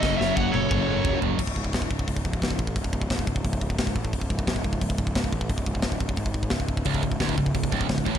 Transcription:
<<
  \new Staff \with { instrumentName = "Lead electric guitar" } { \time 4/4 \key fis \dorian \tempo 4 = 175 dis''8 e''8 fis''8 cis''2 r8 | r1 | r1 | r1 |
r1 | r1 | }
  \new Staff \with { instrumentName = "Lead electric guitar" } { \time 4/4 \key fis \dorian a'8 cis''8 cis''8 a'2 r8 | r1 | r1 | r1 |
r1 | r1 | }
  \new Staff \with { instrumentName = "Distorted electric guitar" } { \clef bass \time 4/4 \key fis \dorian <fis, cis fis>2 <fis, cis fis>2 | r1 | r1 | r1 |
r1 | cis,8 cis,8 d,8 cis,8 cis,8 cis,8 cis,8 a,8 | }
  \new Staff \with { instrumentName = "Distorted electric guitar" } { \clef bass \time 4/4 \key fis \dorian <fis, cis fis>1 | r1 | r1 | r1 |
r1 | cis,8 cis,8 d,8 cis,8 cis,8 cis,8 cis,8 a,8 | }
  \new Staff \with { instrumentName = "Picked electric bass" } { \clef bass \time 4/4 \key fis \dorian fis,,8 fis,,8 fis,,8 fis,,8 fis,,8 fis,,8 fis,,8 fis,,8 | cis,,8 cis,,8 d,,8 cis,,8 cis,,8 cis,,8 cis,,8 a,,8 | cis,,8 cis,,8 d,,8 cis,,8 cis,,8 cis,,8 cis,,8 a,,8 | cis,,8 cis,,8 d,,8 cis,,8 cis,,8 cis,,8 cis,,8 a,,8 |
cis,,8 cis,,8 d,,8 cis,,8 gis,,4 cis,,4 | cis,,8 cis,,8 d,,8 cis,,8 cis,,8 cis,,8 cis,,8 a,,8 | }
  \new DrumStaff \with { instrumentName = "Drums" } \drummode { \time 4/4 <bd sn>8 sn8 bd8 tommh8 <bd toml>4 <bd tomfh>8 tomfh8 | <cymc bd>16 bd16 bd16 bd16 <hho bd sn>16 bd16 bd16 bd16 <hho bd>16 bd16 bd16 bd16 <hho bd sn>16 bd16 bd16 bd16 | <hho bd>16 bd16 bd16 bd16 <hho bd sn>16 bd16 bd16 bd16 <hho bd>16 bd16 bd16 bd16 <hho bd sn>16 bd16 bd16 bd16 | <hho bd>16 bd16 bd16 bd16 <hho bd sn>16 bd16 bd16 bd16 <hho bd>16 bd16 bd16 bd16 <hho bd sn>16 bd16 bd16 bd16 |
<hho bd>16 bd16 bd16 bd16 <hho bd sn>16 bd16 bd16 bd16 <hho bd>16 bd16 bd16 bd16 <hho bd sn>16 bd16 bd16 bd16 | <hho bd>16 bd16 bd16 bd16 <hho bd sn>16 bd16 bd16 bd16 <hho bd>16 bd16 bd16 bd16 <hho bd sn>16 bd16 bd16 bd16 | }
>>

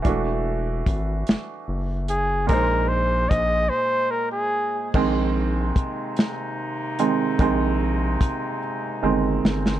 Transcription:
<<
  \new Staff \with { instrumentName = "Flugelhorn" } { \time 6/8 \key bes \minor \tempo 4. = 49 r2 r8 aes'8 | bes'8 c''8 ees''8 c''8 bes'16 aes'8. | r2. | r2. | }
  \new Staff \with { instrumentName = "Woodwind section" } { \time 6/8 \key bes \minor r2. | r2. | <c aes bes ees'>2.~ | <c aes bes ees'>2. | }
  \new Staff \with { instrumentName = "Grand piano" } { \clef bass \time 6/8 \key bes \minor <e a d' fis'>2. | <bes, aes ees' c''>2. | <ees aes c'>4. r4 <ees aes c'>8 | <ees aes c'>4. r8 <ees aes c'>8 r8 | }
  \new Staff \with { instrumentName = "Analog synth bass" } { \clef bass \time 6/8 \key bes \minor e,,4 aes,,8 fis,,8 fis,,4 | bes,,4 bes,,8 r4. | bes,,4 bes,,8 r4. | bes,,4 g,,8 r8 g,,8 g,,8 | }
  \new DrumStaff \with { instrumentName = "Drums" } \drummode { \time 6/8 <hh bd>4 <hh bd>8 <hh sn>4 hh8 | <hh bd>4 <hh bd>8 r4. | <cymc bd>4 <hh bd>8 <hh sn>4 hh8 | <hh bd>4 <hh bd>8 r4 sn16 sn16 | }
>>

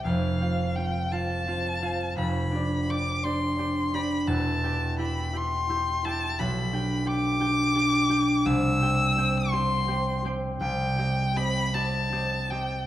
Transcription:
<<
  \new Staff \with { instrumentName = "Violin" } { \time 6/8 \key c \major \tempo 4. = 56 f''4 g''8 a''4. | b''4 d'''8 c'''4 b''8 | a''4 b''8 c'''4 a''8 | \key c \lydian b''4 d'''2 |
e'''4. c'''4 r8 | g''4 b''8 a''4 g''8 | }
  \new Staff \with { instrumentName = "Harp" } { \time 6/8 \key c \major <f,, f, c'>8 <c' f' f''>8 <c' f' f''>8 <c' f' f''>8 <c' f' f''>8 <c' f' f''>8 | <f,, f,>8 <d' g' d''>8 <d' g' d''>8 <d' g' d''>8 <d' g' d''>8 <d' g' d''>8 | <e,, e,>8 <e' g' g''>8 <e' g' g''>8 <e' g' g''>8 <e' g' g''>8 <e' g' g''>8 | \key c \lydian b,,8 <d' g' g''>8 <d' g' g''>8 <d' g' g''>8 <d' g' g''>8 <d' g' g''>8 |
c,8 <c' g' g''>8 <c' g' g''>8 <c' g' g''>8 <c' g' g''>8 <c' g' g''>8 | c,8 <c' g' ees''>8 <c' g' ees''>8 <c' g' ees''>8 <c' g' ees''>8 <c' g' ees''>8 | }
>>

